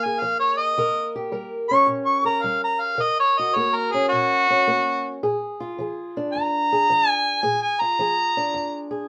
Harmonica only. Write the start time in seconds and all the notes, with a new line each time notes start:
0.05 G#5
0.20 F5
0.40 C#5
0.57 D#5
1.69 C#6
2.05 C#6
2.26 A#5
2.43 F5
2.64 A#5
2.80 F5
3.02 D#5
3.20 C#5
3.38 D#5
3.56 C#5
3.75 A#4
3.92 G#4
4.09 F#4
6.33 A#5
7.09 G#5
7.42 G#5
7.63 G#5
7.81 A#5